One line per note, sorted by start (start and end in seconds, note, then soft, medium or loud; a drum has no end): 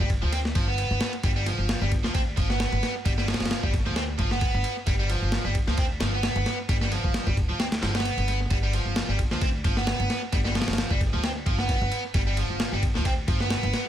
0.00 0.16 G1 loud
0.10 kick medium
0.10 ride medium
0.22 0.51 D2 medium
0.22 0.31 F3 medium
0.33 0.39 C4 medium
0.33 ride medium
0.45 snare medium
0.55 0.85 G1 loud
0.55 0.67 F3 loud
0.55 kick loud
0.55 ride medium
0.68 1.12 B3 medium
0.78 ride medium
0.91 0.98 G1 loud
1.01 snare loud
1.01 ride medium
1.13 ride soft
1.23 1.53 G1 loud
1.23 1.30 G3 medium
1.23 kick loud
1.23 ride medium
1.36 1.46 G3 medium
1.46 1.80 F3 loud
1.46 ride medium
1.58 1.75 G1 medium
1.69 snare loud
1.69 ride medium
1.81 1.97 G1 loud
1.81 1.91 G3 medium
1.92 kick loud
1.92 ride medium
2.04 2.33 D2 medium
2.04 2.13 F3 medium
2.04 snare medium
2.15 2.21 C4 medium
2.15 kick loud
2.15 ride medium
2.37 2.67 G1 loud
2.37 2.48 F3 loud
2.37 kick loud
2.37 ride medium
2.50 2.94 B3 medium
2.50 snare medium
2.60 snare loud
2.60 ride medium
2.72 2.80 G1 loud
2.72 ride soft
2.83 snare medium
2.83 ride medium
3.05 3.35 G1 loud
3.05 3.12 G3 medium
3.05 kick loud
3.05 ride medium
3.18 3.28 G3 medium
3.18 snare soft
3.28 3.62 F3 loud
3.28 snare medium
3.28 ride medium
3.34 snare medium
3.34 ride medium
3.40 3.57 G1 medium
3.40 snare medium
3.40 ride medium
3.46 snare medium
3.46 ride medium
3.51 snare loud
3.51 ride medium
3.63 3.79 G1 loud
3.63 3.72 G3 medium
3.63 kick loud
3.74 kick loud
3.74 ride medium
3.86 4.15 D2 medium
3.86 3.95 F3 medium
3.96 4.03 C4 medium
3.96 snare loud
3.96 ride medium
4.19 4.49 G1 loud
4.19 4.30 F3 loud
4.19 kick medium
4.19 ride medium
4.31 4.75 B3 medium
4.31 snare soft
4.41 kick loud
4.41 ride medium
4.54 4.62 G1 loud
4.64 ride medium
4.87 5.17 G1 loud
4.87 4.94 G3 medium
4.87 kick loud
4.87 ride medium
4.99 5.09 G3 medium
5.09 5.44 F3 loud
5.09 ride medium
5.22 5.38 G1 medium
5.32 snare loud
5.32 ride medium
5.45 5.61 G1 loud
5.45 5.54 G3 medium
5.55 kick loud
5.55 ride medium
5.67 5.96 D2 medium
5.67 5.77 F3 medium
5.67 snare medium
5.78 5.85 C4 medium
5.78 kick loud
5.78 ride medium
6.00 6.30 G1 loud
6.00 6.12 F3 loud
6.00 snare loud
6.00 ride medium
6.13 6.57 B3 medium
6.23 snare loud
6.23 ride medium
6.36 6.43 G1 loud
6.36 ride soft
6.46 snare medium
6.46 ride medium
6.69 6.99 G1 loud
6.69 6.76 G3 medium
6.69 kick loud
6.69 ride medium
6.81 6.91 G3 medium
6.81 snare soft
6.92 7.26 F3 loud
6.92 ride medium
7.04 7.20 G1 medium
7.04 kick loud
7.14 snare loud
7.14 ride medium
7.27 7.43 G1 loud
7.27 7.36 G3 medium
7.27 kick loud
7.37 kick loud
7.37 ride medium
7.49 7.78 D2 medium
7.49 7.59 F3 medium
7.60 7.66 C4 medium
7.60 snare loud
7.60 ride medium
7.72 snare loud
7.72 ride medium
7.83 8.12 G1 loud
7.83 7.94 F3 loud
7.83 snare loud
7.83 ride medium
7.95 8.39 B3 medium
7.95 snare medium
7.95 ride medium
8.00 snare medium
8.00 ride medium
8.05 ride medium
8.17 8.46 G1 medium
8.17 ride soft
8.28 ride medium
8.51 8.81 G1 loud
8.51 8.57 G3 medium
8.51 kick loud
8.51 ride medium
8.63 8.73 G3 medium
8.73 9.08 F3 loud
8.73 ride medium
8.86 9.02 G1 medium
8.96 snare loud
8.96 ride medium
9.08 9.25 G1 loud
9.08 9.18 G3 medium
9.19 kick loud
9.19 ride medium
9.31 9.60 D2 medium
9.31 9.41 F3 medium
9.31 snare medium
9.41 9.48 C4 medium
9.41 kick loud
9.41 ride medium
9.64 9.94 G1 loud
9.64 9.76 F3 loud
9.64 kick loud
9.64 ride medium
9.77 10.21 B3 medium
9.77 snare soft
9.87 snare loud
9.87 ride medium
10.00 10.07 G1 loud
10.00 ride soft
10.10 snare medium
10.10 ride medium
10.33 10.62 G1 loud
10.33 10.39 G3 medium
10.33 kick loud
10.33 ride medium
10.45 10.55 G3 medium
10.45 snare soft
10.55 10.89 F3 loud
10.55 snare medium
10.55 ride medium
10.62 snare medium
10.62 ride medium
10.68 10.84 G1 medium
10.68 snare medium
10.68 ride medium
10.73 snare medium
10.73 ride medium
10.78 snare loud
10.78 ride medium
10.91 11.07 G1 loud
10.91 11.00 G3 medium
10.91 kick loud
11.01 kick loud
11.01 ride medium
11.13 11.42 D2 medium
11.13 11.22 F3 medium
11.24 11.30 C4 medium
11.24 snare loud
11.24 ride medium
11.46 11.76 G1 loud
11.46 11.57 F3 loud
11.46 kick medium
11.46 ride medium
11.59 12.03 B3 medium
11.59 snare soft
11.69 kick loud
11.69 ride medium
11.81 11.89 G1 loud
11.92 ride medium
12.14 12.44 G1 loud
12.14 12.21 G3 medium
12.14 kick loud
12.14 ride medium
12.27 12.37 G3 medium
12.37 12.71 F3 loud
12.37 ride medium
12.50 12.66 G1 medium
12.60 snare loud
12.60 ride medium
12.72 12.88 G1 loud
12.72 12.82 G3 medium
12.83 kick loud
12.83 ride medium
12.95 13.24 D2 medium
12.95 13.04 F3 medium
12.95 snare soft
13.05 13.12 C4 medium
13.05 kick loud
13.05 ride medium
13.28 13.58 G1 loud
13.28 13.39 F3 loud
13.28 kick loud
13.28 ride medium
13.40 13.84 B3 medium
13.40 snare soft
13.50 snare loud
13.50 ride medium
13.63 13.71 G1 loud
13.63 ride soft
13.73 snare medium
13.73 ride medium